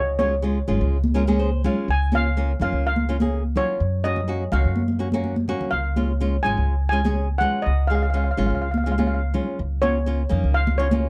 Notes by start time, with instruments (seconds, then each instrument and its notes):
Already playing: upright bass C#2, steel pan C#5
0.19 nylon-string guitar G#3 C#4 F4, steel pan C#5, high conga
0.42 nylon-string guitar G#3 C#4 F4
0.68 upright bass G#1, nylon-string guitar G#3 C#4 F4, low conga
0.81 upright bass C#2
1.04 high conga
1.14 nylon-string guitar G#3 C#4 F4 A#4
1.27 nylon-string guitar G#3 C#4 G#4, high conga
1.39 nylon-string guitar C5
1.64 nylon-string guitar G#3 C#4 F4 F5, low conga
1.88 upright bass C#2, steel pan G#5
2.12 nylon-string guitar A#3 C#4 F4, steel pan F5, high conga
2.37 nylon-string guitar A#3 C#4 F4
2.60 upright bass F2, nylon-string guitar A#3 C#4 F4, steel pan F5, low conga
2.72 upright bass C#2
2.87 steel pan F5
2.96 high conga
3.09 nylon-string guitar A#3 C#4 F4
3.20 nylon-string guitar A#3 C#4 G#4, high conga
3.56 nylon-string guitar A#3 C#4 F4, steel pan C#5, low conga
3.80 upright bass F#2
4.04 nylon-string guitar A#3 C#4 F#4, steel pan D#5
4.16 low conga
4.28 nylon-string guitar A#3 C#4 F#4
4.52 upright bass C#2, nylon-string guitar A#3 C#4 F#4, steel pan F5, low conga
4.65 upright bass F#2
4.76 high conga
4.88 high conga
4.99 nylon-string guitar A#3 C#4 F#4
5.12 nylon-string guitar A#3 C#4 F#4, high conga
5.24 high conga
5.36 high conga
5.48 nylon-string guitar A#3 C#4 F#4, low conga
5.61 low conga
5.71 upright bass C#2, steel pan F5
5.96 nylon-string guitar G#3 C#4 F4, high conga
6.21 nylon-string guitar G#3 C#4 F4
6.43 upright bass G#1, nylon-string guitar G#3 C#4 F4, steel pan G#5, low conga
6.57 upright bass C#2
6.89 nylon-string guitar G#3 C#4 F4, steel pan G#5
7.04 nylon-string guitar G#3 C#4 G#4, high conga
7.38 nylon-string guitar G#3 C#4 F4, steel pan F#5, low conga
7.62 upright bass C#2, steel pan D#5
7.87 nylon-string guitar G#3 C#4 G#4, steel pan F5
7.95 steel pan F5
8.03 steel pan F5
8.10 nylon-string guitar G#3 C#4, steel pan F5
8.14 nylon-string guitar F4, steel pan F5
8.24 steel pan F5
8.31 steel pan F5
8.37 upright bass G#1, nylon-string guitar G#3 C#4 F4, steel pan F5, low conga
8.47 upright bass C#2, steel pan F5
8.55 steel pan F5
8.62 steel pan F5
8.71 steel pan F5, high conga
8.78 steel pan F5
8.84 nylon-string guitar G#3 C#4 F4, steel pan F5
8.92 steel pan F5
8.98 nylon-string guitar G#3 C#4 F4, steel pan F5, high conga
9.07 steel pan F5
9.14 steel pan F5
9.34 nylon-string guitar G#3 C#4 F4, low conga
9.59 upright bass C#2
9.82 nylon-string guitar A#3 C#4 F4, steel pan C#5, high conga
10.06 nylon-string guitar A#3 C#4 F4
10.29 upright bass F2, nylon-string guitar A#3 C#4 D#4, low conga
10.44 upright bass C#2
10.54 steel pan F5
10.67 high conga
10.78 nylon-string guitar A#3 C#4 F4, steel pan C#5
10.91 nylon-string guitar A#3 C#4 F4, high conga